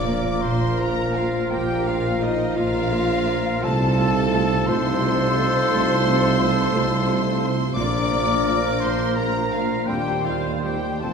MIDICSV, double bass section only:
0, 0, Header, 1, 2, 480
1, 0, Start_track
1, 0, Key_signature, -2, "major"
1, 0, Tempo, 729927
1, 996, Tempo, 704225
1, 2439, Time_signature, 12, 3, 24, 8
1, 2916, Tempo, 683371
1, 5316, Tempo, 706714
1, 6756, Tempo, 755668
1, 7559, End_track
2, 0, Start_track
2, 0, Title_t, "Double bass section"
2, 0, Program_c, 0, 48
2, 0, Note_on_c, 0, 34, 82
2, 199, Note_off_c, 0, 34, 0
2, 283, Note_on_c, 0, 34, 81
2, 913, Note_off_c, 0, 34, 0
2, 995, Note_on_c, 0, 34, 93
2, 1630, Note_off_c, 0, 34, 0
2, 1711, Note_on_c, 0, 34, 100
2, 2352, Note_off_c, 0, 34, 0
2, 2435, Note_on_c, 0, 36, 96
2, 3071, Note_off_c, 0, 36, 0
2, 3160, Note_on_c, 0, 36, 92
2, 3801, Note_off_c, 0, 36, 0
2, 3883, Note_on_c, 0, 36, 105
2, 4507, Note_off_c, 0, 36, 0
2, 4591, Note_on_c, 0, 36, 103
2, 5229, Note_off_c, 0, 36, 0
2, 5314, Note_on_c, 0, 34, 87
2, 5956, Note_off_c, 0, 34, 0
2, 6043, Note_on_c, 0, 34, 81
2, 6670, Note_off_c, 0, 34, 0
2, 6764, Note_on_c, 0, 39, 86
2, 7393, Note_off_c, 0, 39, 0
2, 7483, Note_on_c, 0, 29, 77
2, 7559, Note_off_c, 0, 29, 0
2, 7559, End_track
0, 0, End_of_file